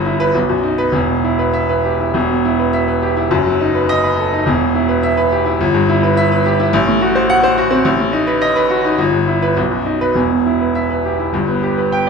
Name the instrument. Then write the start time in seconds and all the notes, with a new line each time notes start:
grand piano
Already playing: G1 G2
0.05 E4
0.20 B4
0.35 B1
0.50 F#2
0.63 D#4
0.78 B4
0.92 E1 E2
1.08 B2
1.24 E4
1.39 B4
1.53 E5
1.69 B4
1.85 G4
2.00 E4
2.14 E1 E2
2.30 B2
2.45 E4
2.59 B4
2.73 E5
2.88 B4
3.02 G4
3.17 E4
3.30 F#1 F#2
3.46 F#3
3.60 D#4
3.75 B4
3.89 D#5
4.04 B4
4.19 A4
4.33 D#4
4.46 E1 E2
4.61 B2
4.75 E4
4.89 B4
5.03 E5
5.17 B4
5.32 G4
5.46 E4
5.61 G1
5.74 G2
5.89 E4
6.03 B4
6.17 E5
6.32 B4
6.46 G4
6.60 E4
6.73 A1
6.87 A2
7.01 F#4
7.15 C5
7.30 F#5
7.44 C5
7.58 F#4
7.71 C4
7.85 A1
7.99 A2
8.13 D#4
8.27 B4
8.42 D#5
8.56 B4
8.70 F#4
8.84 D#4
8.98 G1
9.13 G2
9.28 E4
9.42 B4
9.57 B1
9.71 F#2
9.86 D#4
10.01 B4
10.15 E1 E2
10.30 B2
10.46 E4
10.61 B4
10.75 E5
10.90 B4
11.05 G4
11.20 E4
11.33 G1 G2
11.48 B3
11.63 G4
11.78 B4
11.92 G5